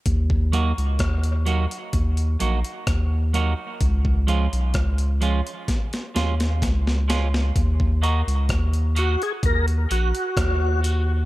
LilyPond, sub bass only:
\new Staff \with { instrumentName = "Sub bass" } { \clef bass \time 4/4 \key ees \minor \tempo 4 = 64 ees,8. des,16 ees,8. r16 ees,8 bes,,16 r16 ees,8. r16 | des,8. ces,16 des,8. r8. ees,8 des,4 | ees,8. des,16 ees,8. r16 ees,8 bes,,16 r16 ees,4 | }